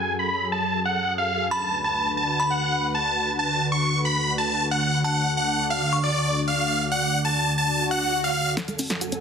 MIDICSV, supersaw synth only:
0, 0, Header, 1, 2, 480
1, 0, Start_track
1, 0, Tempo, 441176
1, 1646, Time_signature, 4, 2, 24, 8
1, 10014, End_track
2, 0, Start_track
2, 0, Title_t, "Supersaw synth"
2, 0, Program_c, 0, 81
2, 0, Note_on_c, 0, 80, 89
2, 140, Note_off_c, 0, 80, 0
2, 207, Note_on_c, 0, 83, 88
2, 499, Note_off_c, 0, 83, 0
2, 567, Note_on_c, 0, 81, 91
2, 859, Note_off_c, 0, 81, 0
2, 929, Note_on_c, 0, 78, 90
2, 1220, Note_off_c, 0, 78, 0
2, 1285, Note_on_c, 0, 77, 90
2, 1578, Note_off_c, 0, 77, 0
2, 1645, Note_on_c, 0, 81, 94
2, 1938, Note_off_c, 0, 81, 0
2, 2006, Note_on_c, 0, 81, 94
2, 2298, Note_off_c, 0, 81, 0
2, 2364, Note_on_c, 0, 81, 92
2, 2658, Note_off_c, 0, 81, 0
2, 2724, Note_on_c, 0, 78, 93
2, 3115, Note_off_c, 0, 78, 0
2, 3205, Note_on_c, 0, 81, 91
2, 3596, Note_off_c, 0, 81, 0
2, 3688, Note_on_c, 0, 81, 93
2, 3979, Note_off_c, 0, 81, 0
2, 4046, Note_on_c, 0, 85, 88
2, 4339, Note_off_c, 0, 85, 0
2, 4406, Note_on_c, 0, 83, 93
2, 4699, Note_off_c, 0, 83, 0
2, 4767, Note_on_c, 0, 81, 90
2, 5059, Note_off_c, 0, 81, 0
2, 5128, Note_on_c, 0, 78, 87
2, 5420, Note_off_c, 0, 78, 0
2, 5487, Note_on_c, 0, 78, 95
2, 5779, Note_off_c, 0, 78, 0
2, 5845, Note_on_c, 0, 78, 89
2, 6138, Note_off_c, 0, 78, 0
2, 6205, Note_on_c, 0, 77, 89
2, 6498, Note_off_c, 0, 77, 0
2, 6567, Note_on_c, 0, 74, 94
2, 6956, Note_off_c, 0, 74, 0
2, 7046, Note_on_c, 0, 77, 92
2, 7436, Note_off_c, 0, 77, 0
2, 7525, Note_on_c, 0, 78, 93
2, 7818, Note_off_c, 0, 78, 0
2, 7886, Note_on_c, 0, 81, 90
2, 8178, Note_off_c, 0, 81, 0
2, 8246, Note_on_c, 0, 81, 93
2, 8539, Note_off_c, 0, 81, 0
2, 8606, Note_on_c, 0, 78, 90
2, 8898, Note_off_c, 0, 78, 0
2, 8965, Note_on_c, 0, 77, 89
2, 9258, Note_off_c, 0, 77, 0
2, 9326, Note_on_c, 0, 78, 97
2, 9327, Note_on_c, 0, 69, 74
2, 9619, Note_off_c, 0, 69, 0
2, 9619, Note_off_c, 0, 78, 0
2, 9685, Note_on_c, 0, 69, 76
2, 9686, Note_on_c, 0, 78, 92
2, 9978, Note_off_c, 0, 69, 0
2, 9979, Note_off_c, 0, 78, 0
2, 10014, End_track
0, 0, End_of_file